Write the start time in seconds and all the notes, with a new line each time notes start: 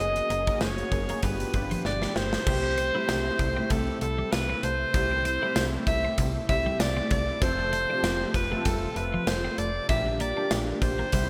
0.00 F#1 F#3 A#3 C#4 F#4 G#4 D#5
0.16 muted clean electric guitar stroke, closed hi-hat
0.30 F#1 A#3, closed hi-hat
0.47 A#3 C#4 D#4 F#4 A#4, kick, closed hi-hat
0.61 F#1 C#4 C#5, snare, tambourine
0.78 closed hi-hat
0.92 F#1 A#3 C#4 F#4 G#4, muted clean electric guitar stroke, kick, closed hi-hat
1.09 A#3, closed hi-hat
1.23 G1 B2 F3 G3 B3 D4 F4 G4 B4, kick, closed hi-hat
1.40 closed hi-hat
1.54 G1 B3 D4 F4 G4, muted clean electric guitar stroke, kick, closed hi-hat
1.71 F3, closed hi-hat
1.85 G1 D5, muted clean electric guitar stroke, snare
2.02 D4, snare
2.16 G1 B3 C5, snare
2.33 snare
2.45 C2 C3 G3 A3 C4 E4 G4, kick, crash
2.64 muted clean electric guitar stroke
2.78 C4, closed hi-hat
2.94 G3 A3 C4 E4 G4
3.09 C2 D4, snare, closed hi-hat, tambourine
3.39 C2, muted clean electric guitar stroke, kick, closed hi-hat
3.56 G3 A3 C4 E4 G4
3.70 C2 A3 A4, kick, closed hi-hat
4.01 C2 A4, muted clean electric guitar stroke, closed hi-hat
4.18 G3
4.32 C2 B4, muted clean electric guitar stroke, snare, closed hi-hat, tambourine
4.50 C4
4.63 C2 A3 C5, closed hi-hat
4.93 C2 G3 A3 C4 E4 G4, kick, closed hi-hat
5.11 muted clean electric guitar stroke
5.25 C4, closed hi-hat
5.41 G3 A3 C4 E4 G4
5.56 C2 D4, snare, closed hi-hat, tambourine
5.87 C2 E5, muted clean electric guitar stroke, kick, closed hi-hat
6.05 C4
6.18 C2 A3, kick, closed hi-hat
6.48 C2 G3 A3 C4 E4 G4 E5, muted clean electric guitar stroke, kick, closed hi-hat
6.66 G3
6.80 C2 D5, muted clean electric guitar stroke, snare, closed hi-hat, tambourine
6.97 C4
7.11 C2 A3 D5, kick, closed hi-hat
7.41 F1 C3 F3 A3 C4 F4 A4 C5, kick, closed hi-hat
7.59 muted clean electric guitar stroke
7.73 A3, closed hi-hat
7.89 F3 A3 C4 D4 F4 G4
8.03 F1 C4, snare, closed hi-hat, tambourine
8.34 F1 B4, muted clean electric guitar stroke, kick, closed hi-hat
8.51 F3 A3 C4 F4 A4
8.65 F1 G3 A4, kick, closed hi-hat
8.96 F1 B4, muted clean electric guitar stroke, closed hi-hat
9.14 F3
9.27 F1 C5, muted clean electric guitar stroke, snare, closed hi-hat, tambourine
9.44 C4
9.58 F1 A3 D5, closed hi-hat
9.88 A#1 D3 G3 A#3 D4 F4 G4 E5, kick, closed hi-hat
10.06 muted clean electric guitar stroke
10.20 A#3 D5, closed hi-hat
10.36 G3 A#3 D4 F4 G4
10.51 A#1 C4, snare, closed hi-hat, tambourine
10.82 A#1 C5, muted clean electric guitar stroke, kick, closed hi-hat
10.99 A#3
11.12 C2 C3 G3 B3 C4 E4 G4, kick, closed hi-hat